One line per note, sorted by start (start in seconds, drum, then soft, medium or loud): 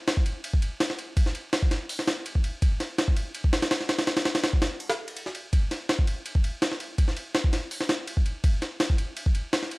0.08 snare loud
0.08 ride medium
0.17 kick loud
0.26 ride medium
0.44 ride medium
0.53 kick loud
0.62 ride medium
0.80 snare loud
0.80 ride medium
0.90 snare soft
0.99 ride medium
1.17 kick loud
1.17 ride medium
1.26 snare soft
1.35 ride medium
1.53 snare loud
1.53 ride medium
1.63 kick loud
1.71 snare medium
1.71 ride medium
1.89 open hi-hat medium
1.99 snare medium
2.07 snare loud
2.07 ride medium
2.26 ride medium
2.35 kick medium
2.44 ride medium
2.62 kick loud
2.62 ride medium
2.80 snare medium
2.80 ride medium
2.98 snare loud
2.98 ride medium
3.08 kick loud
3.17 ride medium
3.35 ride medium
3.44 kick loud
3.53 snare loud
3.53 ride medium
3.62 snare loud
3.62 ride medium
3.71 snare loud
3.71 ride medium
3.81 snare soft
3.89 snare loud
3.89 ride medium
3.99 snare loud
3.99 ride medium
4.07 snare loud
4.07 ride medium
4.17 snare loud
4.17 ride medium
4.25 snare loud
4.25 ride medium
4.35 snare loud
4.35 ride medium
4.44 snare loud
4.44 ride loud
4.53 kick loud
4.62 snare loud
4.62 ride medium
4.80 ride medium
4.90 snare loud
4.90 ride medium
5.08 ride medium
5.17 ride medium
5.26 snare soft
5.35 ride medium
5.53 kick loud
5.53 ride medium
5.71 snare medium
5.71 ride medium
5.89 snare loud
5.89 ride medium
5.99 kick loud
6.07 ride medium
6.26 ride medium
6.35 kick loud
6.44 ride medium
6.62 snare loud
6.62 ride medium
6.72 snare soft
6.80 ride medium
6.98 kick loud
6.98 ride medium
7.08 snare soft
7.17 ride medium
7.35 snare loud
7.35 ride medium
7.44 kick loud
7.53 snare medium
7.53 ride medium
7.71 open hi-hat medium
7.80 snare medium
7.89 snare loud
7.89 ride medium
8.07 ride medium
8.17 kick medium
8.26 ride medium
8.44 kick loud
8.44 ride medium
8.62 snare soft
8.62 ride medium
8.80 snare loud
8.80 ride medium
8.90 kick loud
8.98 ride medium
9.17 ride medium
9.26 kick loud
9.35 ride medium
9.53 snare loud
9.53 ride medium
9.63 snare soft
9.71 ride medium